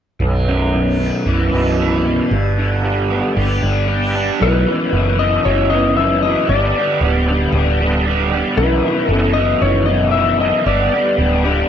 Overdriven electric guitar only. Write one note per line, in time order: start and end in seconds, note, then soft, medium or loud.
0.21 0.74 B1 medium
0.48 0.99 F#2 medium
0.75 2.06 B1 medium
1.00 2.32 F#2 medium
1.27 1.78 E3 medium
1.54 2.05 B2 medium
1.80 2.32 E3 medium
2.06 2.32 B2 medium
2.32 3.63 G2 medium
2.58 3.89 D3 medium
2.84 4.15 G3 medium
3.10 4.41 B3 medium
3.36 3.87 G4 medium
3.62 4.14 D4 medium
3.88 4.41 G4 medium
4.15 4.41 D4 medium
4.40 4.91 B1 medium
4.40 4.68 F#2 medium
4.40 4.67 B2 medium
4.40 4.65 E3 medium
4.66 4.93 F#2 medium
4.66 4.94 B2 medium
4.66 4.95 E3 medium
4.93 5.20 B1 medium
4.93 5.19 F#2 medium
4.93 5.18 B2 medium
4.93 5.17 E3 medium
5.18 5.43 B1 medium
5.18 5.45 F#2 medium
5.18 5.46 B2 medium
5.18 5.47 E3 medium
5.45 5.73 B1 medium
5.45 5.72 F#2 medium
5.45 5.70 B2 medium
5.45 5.70 E3 medium
5.71 5.96 B1 medium
5.71 5.97 F#2 medium
5.71 5.98 B2 medium
5.71 5.99 E3 medium
5.97 6.48 B1 medium
5.97 6.26 F#2 medium
5.97 6.24 B2 medium
5.97 6.23 E3 medium
6.24 6.50 F#2 soft
6.24 6.49 B2 medium
6.24 6.48 E3 medium
6.50 7.02 G2 medium
6.50 7.02 D3 medium
6.50 6.79 G3 medium
6.50 6.79 B3 medium
6.50 6.77 D4 medium
6.50 6.75 G4 medium
6.76 7.01 G3 medium
6.76 7.03 B3 medium
6.76 7.03 D4 medium
6.76 7.04 G4 medium
7.02 7.29 G3 medium
7.02 7.29 B3 medium
7.02 7.27 D4 medium
7.02 7.26 G4 medium
7.28 7.82 G2 medium
7.28 7.81 D3 medium
7.28 7.53 G3 medium
7.28 7.55 B3 medium
7.28 7.55 D4 medium
7.28 7.57 G4 medium
7.54 7.82 G3 medium
7.54 7.82 B3 medium
7.54 7.81 D4 medium
7.54 7.80 G4 medium
7.81 8.34 G2 medium
7.81 8.34 D3 medium
7.81 8.05 G3 medium
7.81 8.08 B3 medium
7.81 8.08 D4 medium
7.81 8.09 G4 medium
8.06 8.34 G3 medium
8.06 8.34 B3 medium
8.06 8.32 D4 medium
8.06 8.31 G4 medium
8.32 8.58 G3 medium
8.32 8.61 B3 medium
8.32 8.57 D4 medium
8.32 8.57 G4 medium
8.58 9.09 B1 medium
8.58 8.88 F#2 medium
8.58 8.86 B2 medium
8.58 8.84 E3 medium
8.85 9.10 F#2 soft
8.85 9.12 B2 medium
8.85 9.12 E3 medium
9.10 9.39 B1 medium
9.10 9.38 F#2 medium
9.10 9.37 B2 medium
9.10 9.35 E3 medium
9.36 9.60 B1 medium
9.36 9.62 F#2 medium
9.36 9.63 B2 medium
9.36 9.64 E3 medium
9.62 9.90 B1 medium
9.62 9.88 F#2 medium
9.62 9.88 B2 medium
9.62 9.86 E3 medium
9.87 10.12 B1 medium
9.87 10.14 F#2 medium
9.87 10.15 B2 medium
9.87 10.16 E3 medium
10.14 10.64 B1 medium
10.14 10.42 F#2 medium
10.14 10.40 B2 medium
10.14 10.39 E3 medium
10.40 10.66 F#2 medium
10.40 10.65 B2 medium
10.40 10.64 E3 medium
10.65 11.18 G2 medium
10.65 11.18 D3 medium
10.65 10.94 G3 medium
10.65 10.94 B3 medium
10.65 10.92 D4 medium
10.65 10.91 G4 medium
10.92 11.17 G3 soft
10.92 11.19 B3 medium
10.92 11.19 D4 medium
10.92 11.20 G4 medium
11.18 11.45 G3 medium
11.18 11.45 B3 medium
11.18 11.44 D4 medium
11.18 11.43 G4 medium
11.44 11.69 G2 medium
11.44 11.69 D3 medium
11.44 11.69 G3 medium
11.44 11.69 B3 medium
11.44 11.69 D4 medium
11.44 11.69 G4 medium